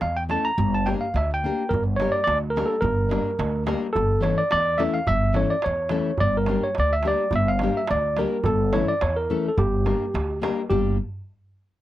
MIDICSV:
0, 0, Header, 1, 5, 480
1, 0, Start_track
1, 0, Tempo, 562324
1, 503, Time_signature, 2, 2, 24, 8
1, 10084, End_track
2, 0, Start_track
2, 0, Title_t, "Tine electric piano"
2, 0, Program_c, 0, 4
2, 14, Note_on_c, 0, 77, 88
2, 133, Note_off_c, 0, 77, 0
2, 141, Note_on_c, 0, 79, 90
2, 194, Note_off_c, 0, 79, 0
2, 263, Note_on_c, 0, 81, 98
2, 382, Note_on_c, 0, 82, 111
2, 391, Note_off_c, 0, 81, 0
2, 633, Note_off_c, 0, 82, 0
2, 636, Note_on_c, 0, 81, 90
2, 734, Note_on_c, 0, 79, 85
2, 751, Note_off_c, 0, 81, 0
2, 793, Note_off_c, 0, 79, 0
2, 860, Note_on_c, 0, 77, 79
2, 984, Note_off_c, 0, 77, 0
2, 999, Note_on_c, 0, 76, 87
2, 1108, Note_off_c, 0, 76, 0
2, 1143, Note_on_c, 0, 79, 98
2, 1444, Note_on_c, 0, 70, 99
2, 1459, Note_off_c, 0, 79, 0
2, 1558, Note_off_c, 0, 70, 0
2, 1677, Note_on_c, 0, 73, 98
2, 1808, Note_on_c, 0, 74, 95
2, 1821, Note_off_c, 0, 73, 0
2, 1901, Note_off_c, 0, 74, 0
2, 1911, Note_on_c, 0, 74, 109
2, 2027, Note_off_c, 0, 74, 0
2, 2136, Note_on_c, 0, 70, 99
2, 2268, Note_on_c, 0, 69, 87
2, 2276, Note_off_c, 0, 70, 0
2, 2397, Note_off_c, 0, 69, 0
2, 2397, Note_on_c, 0, 70, 110
2, 3099, Note_off_c, 0, 70, 0
2, 3352, Note_on_c, 0, 69, 106
2, 3592, Note_off_c, 0, 69, 0
2, 3606, Note_on_c, 0, 73, 87
2, 3736, Note_on_c, 0, 74, 101
2, 3746, Note_off_c, 0, 73, 0
2, 3848, Note_off_c, 0, 74, 0
2, 3858, Note_on_c, 0, 74, 124
2, 4079, Note_on_c, 0, 76, 102
2, 4111, Note_off_c, 0, 74, 0
2, 4214, Note_on_c, 0, 77, 104
2, 4222, Note_off_c, 0, 76, 0
2, 4330, Note_off_c, 0, 77, 0
2, 4332, Note_on_c, 0, 76, 127
2, 4580, Note_on_c, 0, 73, 90
2, 4587, Note_off_c, 0, 76, 0
2, 4698, Note_on_c, 0, 74, 87
2, 4712, Note_off_c, 0, 73, 0
2, 4816, Note_on_c, 0, 73, 99
2, 4824, Note_off_c, 0, 74, 0
2, 5297, Note_on_c, 0, 74, 116
2, 5316, Note_off_c, 0, 73, 0
2, 5430, Note_off_c, 0, 74, 0
2, 5440, Note_on_c, 0, 70, 92
2, 5659, Note_off_c, 0, 70, 0
2, 5664, Note_on_c, 0, 73, 85
2, 5775, Note_off_c, 0, 73, 0
2, 5801, Note_on_c, 0, 74, 114
2, 5913, Note_on_c, 0, 76, 101
2, 5921, Note_off_c, 0, 74, 0
2, 6031, Note_off_c, 0, 76, 0
2, 6040, Note_on_c, 0, 74, 106
2, 6256, Note_off_c, 0, 74, 0
2, 6279, Note_on_c, 0, 76, 112
2, 6388, Note_on_c, 0, 77, 105
2, 6400, Note_off_c, 0, 76, 0
2, 6634, Note_on_c, 0, 76, 83
2, 6635, Note_off_c, 0, 77, 0
2, 6739, Note_off_c, 0, 76, 0
2, 6751, Note_on_c, 0, 74, 103
2, 6987, Note_on_c, 0, 70, 82
2, 6994, Note_off_c, 0, 74, 0
2, 7216, Note_on_c, 0, 69, 105
2, 7232, Note_off_c, 0, 70, 0
2, 7452, Note_on_c, 0, 73, 89
2, 7467, Note_off_c, 0, 69, 0
2, 7572, Note_off_c, 0, 73, 0
2, 7584, Note_on_c, 0, 74, 96
2, 7703, Note_on_c, 0, 73, 92
2, 7704, Note_off_c, 0, 74, 0
2, 7818, Note_off_c, 0, 73, 0
2, 7822, Note_on_c, 0, 70, 86
2, 8071, Note_off_c, 0, 70, 0
2, 8096, Note_on_c, 0, 69, 74
2, 8183, Note_on_c, 0, 67, 98
2, 8199, Note_off_c, 0, 69, 0
2, 8867, Note_off_c, 0, 67, 0
2, 9130, Note_on_c, 0, 67, 87
2, 9357, Note_off_c, 0, 67, 0
2, 10084, End_track
3, 0, Start_track
3, 0, Title_t, "Nylon-string guitar"
3, 0, Program_c, 1, 24
3, 246, Note_on_c, 1, 57, 75
3, 257, Note_on_c, 1, 61, 71
3, 262, Note_on_c, 1, 64, 69
3, 268, Note_on_c, 1, 69, 70
3, 413, Note_off_c, 1, 57, 0
3, 418, Note_off_c, 1, 61, 0
3, 421, Note_off_c, 1, 64, 0
3, 424, Note_off_c, 1, 69, 0
3, 732, Note_on_c, 1, 58, 65
3, 741, Note_on_c, 1, 62, 56
3, 749, Note_on_c, 1, 67, 60
3, 756, Note_on_c, 1, 70, 82
3, 897, Note_off_c, 1, 58, 0
3, 902, Note_off_c, 1, 62, 0
3, 906, Note_off_c, 1, 67, 0
3, 909, Note_off_c, 1, 70, 0
3, 1229, Note_on_c, 1, 58, 77
3, 1240, Note_on_c, 1, 62, 68
3, 1246, Note_on_c, 1, 67, 61
3, 1247, Note_on_c, 1, 70, 76
3, 1386, Note_off_c, 1, 58, 0
3, 1392, Note_off_c, 1, 62, 0
3, 1394, Note_off_c, 1, 70, 0
3, 1395, Note_off_c, 1, 67, 0
3, 1706, Note_on_c, 1, 58, 55
3, 1710, Note_on_c, 1, 55, 67
3, 1715, Note_on_c, 1, 62, 67
3, 1717, Note_on_c, 1, 67, 62
3, 1722, Note_on_c, 1, 70, 74
3, 1866, Note_off_c, 1, 58, 0
3, 1868, Note_off_c, 1, 55, 0
3, 1869, Note_off_c, 1, 62, 0
3, 1871, Note_off_c, 1, 67, 0
3, 1873, Note_off_c, 1, 70, 0
3, 2185, Note_on_c, 1, 55, 76
3, 2189, Note_on_c, 1, 58, 65
3, 2194, Note_on_c, 1, 62, 64
3, 2197, Note_on_c, 1, 67, 69
3, 2200, Note_on_c, 1, 70, 82
3, 2347, Note_off_c, 1, 55, 0
3, 2347, Note_off_c, 1, 58, 0
3, 2348, Note_off_c, 1, 62, 0
3, 2348, Note_off_c, 1, 67, 0
3, 2353, Note_off_c, 1, 70, 0
3, 2639, Note_on_c, 1, 55, 62
3, 2651, Note_on_c, 1, 58, 54
3, 2655, Note_on_c, 1, 62, 66
3, 2660, Note_on_c, 1, 67, 66
3, 2668, Note_on_c, 1, 70, 75
3, 2813, Note_off_c, 1, 55, 0
3, 2819, Note_off_c, 1, 58, 0
3, 2820, Note_off_c, 1, 62, 0
3, 2824, Note_off_c, 1, 67, 0
3, 2825, Note_off_c, 1, 70, 0
3, 3127, Note_on_c, 1, 62, 83
3, 3128, Note_on_c, 1, 55, 98
3, 3131, Note_on_c, 1, 58, 83
3, 3135, Note_on_c, 1, 67, 81
3, 3143, Note_on_c, 1, 70, 94
3, 3296, Note_off_c, 1, 62, 0
3, 3297, Note_off_c, 1, 55, 0
3, 3299, Note_off_c, 1, 58, 0
3, 3300, Note_off_c, 1, 67, 0
3, 3304, Note_off_c, 1, 70, 0
3, 3589, Note_on_c, 1, 52, 73
3, 3592, Note_on_c, 1, 57, 61
3, 3595, Note_on_c, 1, 61, 64
3, 3599, Note_on_c, 1, 64, 65
3, 3603, Note_on_c, 1, 69, 72
3, 3768, Note_off_c, 1, 52, 0
3, 3768, Note_off_c, 1, 57, 0
3, 3771, Note_off_c, 1, 61, 0
3, 3771, Note_off_c, 1, 64, 0
3, 3775, Note_off_c, 1, 69, 0
3, 4079, Note_on_c, 1, 52, 68
3, 4083, Note_on_c, 1, 57, 66
3, 4087, Note_on_c, 1, 61, 73
3, 4089, Note_on_c, 1, 64, 77
3, 4096, Note_on_c, 1, 69, 89
3, 4252, Note_off_c, 1, 52, 0
3, 4254, Note_off_c, 1, 57, 0
3, 4256, Note_off_c, 1, 61, 0
3, 4256, Note_off_c, 1, 64, 0
3, 4261, Note_off_c, 1, 69, 0
3, 4548, Note_on_c, 1, 52, 68
3, 4555, Note_on_c, 1, 57, 61
3, 4562, Note_on_c, 1, 61, 66
3, 4570, Note_on_c, 1, 69, 75
3, 4571, Note_on_c, 1, 64, 66
3, 4726, Note_off_c, 1, 52, 0
3, 4731, Note_off_c, 1, 57, 0
3, 4732, Note_off_c, 1, 61, 0
3, 4737, Note_off_c, 1, 64, 0
3, 4738, Note_off_c, 1, 69, 0
3, 5034, Note_on_c, 1, 52, 73
3, 5041, Note_on_c, 1, 57, 71
3, 5042, Note_on_c, 1, 61, 60
3, 5047, Note_on_c, 1, 69, 83
3, 5050, Note_on_c, 1, 64, 73
3, 5209, Note_off_c, 1, 52, 0
3, 5211, Note_off_c, 1, 57, 0
3, 5213, Note_off_c, 1, 61, 0
3, 5216, Note_off_c, 1, 64, 0
3, 5216, Note_off_c, 1, 69, 0
3, 5530, Note_on_c, 1, 55, 77
3, 5533, Note_on_c, 1, 58, 61
3, 5538, Note_on_c, 1, 62, 62
3, 5538, Note_on_c, 1, 67, 61
3, 5542, Note_on_c, 1, 70, 63
3, 5696, Note_off_c, 1, 55, 0
3, 5698, Note_off_c, 1, 58, 0
3, 5699, Note_off_c, 1, 67, 0
3, 5701, Note_off_c, 1, 62, 0
3, 5701, Note_off_c, 1, 70, 0
3, 6007, Note_on_c, 1, 55, 77
3, 6011, Note_on_c, 1, 58, 65
3, 6018, Note_on_c, 1, 62, 76
3, 6018, Note_on_c, 1, 67, 65
3, 6022, Note_on_c, 1, 70, 83
3, 6175, Note_off_c, 1, 55, 0
3, 6176, Note_off_c, 1, 58, 0
3, 6180, Note_off_c, 1, 62, 0
3, 6180, Note_off_c, 1, 67, 0
3, 6182, Note_off_c, 1, 70, 0
3, 6500, Note_on_c, 1, 55, 77
3, 6505, Note_on_c, 1, 58, 67
3, 6508, Note_on_c, 1, 62, 56
3, 6515, Note_on_c, 1, 67, 67
3, 6519, Note_on_c, 1, 70, 71
3, 6660, Note_off_c, 1, 55, 0
3, 6664, Note_off_c, 1, 58, 0
3, 6664, Note_off_c, 1, 62, 0
3, 6668, Note_off_c, 1, 67, 0
3, 6670, Note_off_c, 1, 70, 0
3, 6979, Note_on_c, 1, 55, 87
3, 6985, Note_on_c, 1, 62, 81
3, 6989, Note_on_c, 1, 58, 71
3, 6992, Note_on_c, 1, 67, 72
3, 6994, Note_on_c, 1, 70, 79
3, 7140, Note_off_c, 1, 55, 0
3, 7141, Note_off_c, 1, 62, 0
3, 7145, Note_off_c, 1, 58, 0
3, 7145, Note_off_c, 1, 67, 0
3, 7147, Note_off_c, 1, 70, 0
3, 7453, Note_on_c, 1, 52, 67
3, 7459, Note_on_c, 1, 57, 55
3, 7461, Note_on_c, 1, 64, 74
3, 7468, Note_on_c, 1, 61, 65
3, 7472, Note_on_c, 1, 69, 69
3, 7616, Note_off_c, 1, 52, 0
3, 7619, Note_off_c, 1, 57, 0
3, 7619, Note_off_c, 1, 64, 0
3, 7624, Note_off_c, 1, 61, 0
3, 7625, Note_off_c, 1, 69, 0
3, 7937, Note_on_c, 1, 52, 73
3, 7940, Note_on_c, 1, 57, 70
3, 7945, Note_on_c, 1, 61, 69
3, 7945, Note_on_c, 1, 64, 69
3, 7946, Note_on_c, 1, 69, 91
3, 8098, Note_off_c, 1, 52, 0
3, 8100, Note_off_c, 1, 57, 0
3, 8101, Note_off_c, 1, 61, 0
3, 8101, Note_off_c, 1, 69, 0
3, 8102, Note_off_c, 1, 64, 0
3, 8411, Note_on_c, 1, 55, 66
3, 8417, Note_on_c, 1, 58, 59
3, 8419, Note_on_c, 1, 62, 62
3, 8422, Note_on_c, 1, 67, 59
3, 8423, Note_on_c, 1, 70, 65
3, 8574, Note_off_c, 1, 55, 0
3, 8576, Note_off_c, 1, 58, 0
3, 8579, Note_off_c, 1, 62, 0
3, 8579, Note_off_c, 1, 67, 0
3, 8579, Note_off_c, 1, 70, 0
3, 8890, Note_on_c, 1, 55, 79
3, 8894, Note_on_c, 1, 58, 85
3, 8901, Note_on_c, 1, 62, 70
3, 8906, Note_on_c, 1, 67, 80
3, 8907, Note_on_c, 1, 70, 97
3, 9053, Note_off_c, 1, 55, 0
3, 9055, Note_off_c, 1, 58, 0
3, 9060, Note_off_c, 1, 62, 0
3, 9060, Note_off_c, 1, 67, 0
3, 9062, Note_off_c, 1, 70, 0
3, 9134, Note_on_c, 1, 55, 84
3, 9140, Note_on_c, 1, 58, 67
3, 9141, Note_on_c, 1, 67, 89
3, 9145, Note_on_c, 1, 62, 70
3, 9361, Note_off_c, 1, 55, 0
3, 9362, Note_off_c, 1, 58, 0
3, 9363, Note_off_c, 1, 62, 0
3, 9363, Note_off_c, 1, 67, 0
3, 10084, End_track
4, 0, Start_track
4, 0, Title_t, "Upright bass"
4, 0, Program_c, 2, 32
4, 13, Note_on_c, 2, 40, 93
4, 304, Note_off_c, 2, 40, 0
4, 493, Note_on_c, 2, 31, 121
4, 785, Note_off_c, 2, 31, 0
4, 972, Note_on_c, 2, 38, 100
4, 1265, Note_off_c, 2, 38, 0
4, 1456, Note_on_c, 2, 31, 101
4, 1748, Note_off_c, 2, 31, 0
4, 1938, Note_on_c, 2, 38, 102
4, 2229, Note_off_c, 2, 38, 0
4, 2406, Note_on_c, 2, 31, 109
4, 2701, Note_off_c, 2, 31, 0
4, 2892, Note_on_c, 2, 38, 105
4, 3185, Note_off_c, 2, 38, 0
4, 3382, Note_on_c, 2, 31, 106
4, 3672, Note_off_c, 2, 31, 0
4, 3863, Note_on_c, 2, 40, 99
4, 4153, Note_off_c, 2, 40, 0
4, 4343, Note_on_c, 2, 31, 113
4, 4632, Note_off_c, 2, 31, 0
4, 4828, Note_on_c, 2, 40, 103
4, 5116, Note_off_c, 2, 40, 0
4, 5299, Note_on_c, 2, 31, 107
4, 5589, Note_off_c, 2, 31, 0
4, 5787, Note_on_c, 2, 38, 96
4, 6075, Note_off_c, 2, 38, 0
4, 6252, Note_on_c, 2, 31, 114
4, 6544, Note_off_c, 2, 31, 0
4, 6747, Note_on_c, 2, 38, 110
4, 7034, Note_off_c, 2, 38, 0
4, 7218, Note_on_c, 2, 31, 110
4, 7507, Note_off_c, 2, 31, 0
4, 7700, Note_on_c, 2, 40, 98
4, 7988, Note_off_c, 2, 40, 0
4, 8174, Note_on_c, 2, 31, 116
4, 8464, Note_off_c, 2, 31, 0
4, 8658, Note_on_c, 2, 38, 97
4, 8946, Note_off_c, 2, 38, 0
4, 9137, Note_on_c, 2, 31, 105
4, 9361, Note_off_c, 2, 31, 0
4, 10084, End_track
5, 0, Start_track
5, 0, Title_t, "Darbuka"
5, 8, Note_on_c, 9, 63, 72
5, 93, Note_off_c, 9, 63, 0
5, 253, Note_on_c, 9, 63, 66
5, 338, Note_off_c, 9, 63, 0
5, 499, Note_on_c, 9, 64, 88
5, 585, Note_off_c, 9, 64, 0
5, 631, Note_on_c, 9, 63, 28
5, 717, Note_off_c, 9, 63, 0
5, 740, Note_on_c, 9, 63, 70
5, 826, Note_off_c, 9, 63, 0
5, 877, Note_on_c, 9, 63, 28
5, 962, Note_off_c, 9, 63, 0
5, 988, Note_on_c, 9, 63, 80
5, 1073, Note_off_c, 9, 63, 0
5, 1124, Note_on_c, 9, 63, 29
5, 1209, Note_off_c, 9, 63, 0
5, 1371, Note_on_c, 9, 63, 24
5, 1457, Note_off_c, 9, 63, 0
5, 1484, Note_on_c, 9, 64, 92
5, 1569, Note_off_c, 9, 64, 0
5, 1705, Note_on_c, 9, 63, 79
5, 1790, Note_off_c, 9, 63, 0
5, 1834, Note_on_c, 9, 63, 33
5, 1920, Note_off_c, 9, 63, 0
5, 1942, Note_on_c, 9, 63, 82
5, 2028, Note_off_c, 9, 63, 0
5, 2079, Note_on_c, 9, 63, 28
5, 2164, Note_off_c, 9, 63, 0
5, 2195, Note_on_c, 9, 63, 73
5, 2281, Note_off_c, 9, 63, 0
5, 2326, Note_on_c, 9, 63, 25
5, 2412, Note_off_c, 9, 63, 0
5, 2426, Note_on_c, 9, 64, 92
5, 2511, Note_off_c, 9, 64, 0
5, 2658, Note_on_c, 9, 63, 82
5, 2743, Note_off_c, 9, 63, 0
5, 2792, Note_on_c, 9, 63, 30
5, 2877, Note_off_c, 9, 63, 0
5, 2898, Note_on_c, 9, 63, 89
5, 2983, Note_off_c, 9, 63, 0
5, 3020, Note_on_c, 9, 63, 29
5, 3105, Note_off_c, 9, 63, 0
5, 3131, Note_on_c, 9, 63, 82
5, 3216, Note_off_c, 9, 63, 0
5, 3266, Note_on_c, 9, 63, 30
5, 3351, Note_off_c, 9, 63, 0
5, 3376, Note_on_c, 9, 64, 93
5, 3461, Note_off_c, 9, 64, 0
5, 3614, Note_on_c, 9, 63, 74
5, 3700, Note_off_c, 9, 63, 0
5, 3745, Note_on_c, 9, 63, 28
5, 3831, Note_off_c, 9, 63, 0
5, 3848, Note_on_c, 9, 63, 89
5, 3933, Note_off_c, 9, 63, 0
5, 3972, Note_on_c, 9, 63, 24
5, 4058, Note_off_c, 9, 63, 0
5, 4096, Note_on_c, 9, 63, 75
5, 4182, Note_off_c, 9, 63, 0
5, 4211, Note_on_c, 9, 63, 29
5, 4297, Note_off_c, 9, 63, 0
5, 4326, Note_on_c, 9, 64, 95
5, 4411, Note_off_c, 9, 64, 0
5, 4448, Note_on_c, 9, 63, 23
5, 4533, Note_off_c, 9, 63, 0
5, 4560, Note_on_c, 9, 63, 77
5, 4645, Note_off_c, 9, 63, 0
5, 4692, Note_on_c, 9, 63, 31
5, 4777, Note_off_c, 9, 63, 0
5, 4798, Note_on_c, 9, 63, 81
5, 4884, Note_off_c, 9, 63, 0
5, 4915, Note_on_c, 9, 63, 27
5, 5000, Note_off_c, 9, 63, 0
5, 5030, Note_on_c, 9, 63, 79
5, 5116, Note_off_c, 9, 63, 0
5, 5160, Note_on_c, 9, 63, 28
5, 5246, Note_off_c, 9, 63, 0
5, 5271, Note_on_c, 9, 64, 93
5, 5357, Note_off_c, 9, 64, 0
5, 5518, Note_on_c, 9, 63, 73
5, 5603, Note_off_c, 9, 63, 0
5, 5652, Note_on_c, 9, 63, 32
5, 5737, Note_off_c, 9, 63, 0
5, 5759, Note_on_c, 9, 63, 76
5, 5845, Note_off_c, 9, 63, 0
5, 5892, Note_on_c, 9, 63, 24
5, 5977, Note_off_c, 9, 63, 0
5, 5998, Note_on_c, 9, 63, 68
5, 6083, Note_off_c, 9, 63, 0
5, 6130, Note_on_c, 9, 63, 32
5, 6215, Note_off_c, 9, 63, 0
5, 6238, Note_on_c, 9, 64, 98
5, 6323, Note_off_c, 9, 64, 0
5, 6479, Note_on_c, 9, 63, 80
5, 6565, Note_off_c, 9, 63, 0
5, 6608, Note_on_c, 9, 63, 35
5, 6693, Note_off_c, 9, 63, 0
5, 6722, Note_on_c, 9, 63, 86
5, 6807, Note_off_c, 9, 63, 0
5, 6844, Note_on_c, 9, 63, 28
5, 6930, Note_off_c, 9, 63, 0
5, 6970, Note_on_c, 9, 63, 76
5, 7055, Note_off_c, 9, 63, 0
5, 7089, Note_on_c, 9, 63, 30
5, 7174, Note_off_c, 9, 63, 0
5, 7201, Note_on_c, 9, 64, 114
5, 7287, Note_off_c, 9, 64, 0
5, 7449, Note_on_c, 9, 63, 84
5, 7535, Note_off_c, 9, 63, 0
5, 7693, Note_on_c, 9, 63, 97
5, 7779, Note_off_c, 9, 63, 0
5, 7809, Note_on_c, 9, 63, 30
5, 7894, Note_off_c, 9, 63, 0
5, 8046, Note_on_c, 9, 63, 28
5, 8131, Note_off_c, 9, 63, 0
5, 8174, Note_on_c, 9, 64, 98
5, 8259, Note_off_c, 9, 64, 0
5, 8300, Note_on_c, 9, 63, 27
5, 8385, Note_off_c, 9, 63, 0
5, 8417, Note_on_c, 9, 63, 72
5, 8502, Note_off_c, 9, 63, 0
5, 8553, Note_on_c, 9, 63, 32
5, 8638, Note_off_c, 9, 63, 0
5, 8665, Note_on_c, 9, 63, 80
5, 8750, Note_off_c, 9, 63, 0
5, 8792, Note_on_c, 9, 63, 30
5, 8877, Note_off_c, 9, 63, 0
5, 8905, Note_on_c, 9, 63, 83
5, 8990, Note_off_c, 9, 63, 0
5, 9029, Note_on_c, 9, 63, 29
5, 9114, Note_off_c, 9, 63, 0
5, 9146, Note_on_c, 9, 64, 92
5, 9232, Note_off_c, 9, 64, 0
5, 10084, End_track
0, 0, End_of_file